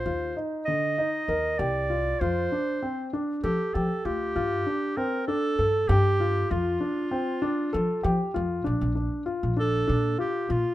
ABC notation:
X:1
M:7/8
L:1/16
Q:1/4=98
K:Fmix
V:1 name="Clarinet"
c2 z2 e6 d4 | c6 z2 G2 A2 G2- | G4 B2 A4 G4 | F12 z2 |
z6 A4 G2 F2 |]
V:2 name="Grand piano"
F2 E2 D,2 E2 B2 G2 F2 | F2 D2 C2 D2 A2 G2 F2 | F2 D2 C2 D2 A2 G2 F2 | F2 D2 C2 D2 A2 G2 F2 |
D2 D2 F2 D2 D2 F2 F2 |]
V:3 name="Upright bass" clef=bass
E,,2 z6 E,,2 C,,4 | F,,2 z6 F, z F, z D,,2 | G,,2 z6 G,,2 G,,4 | F,,2 z6 F, z F, z F,,2 |
B,,, B,,,2 z2 B,,,3 B,,2 z2 B,, z |]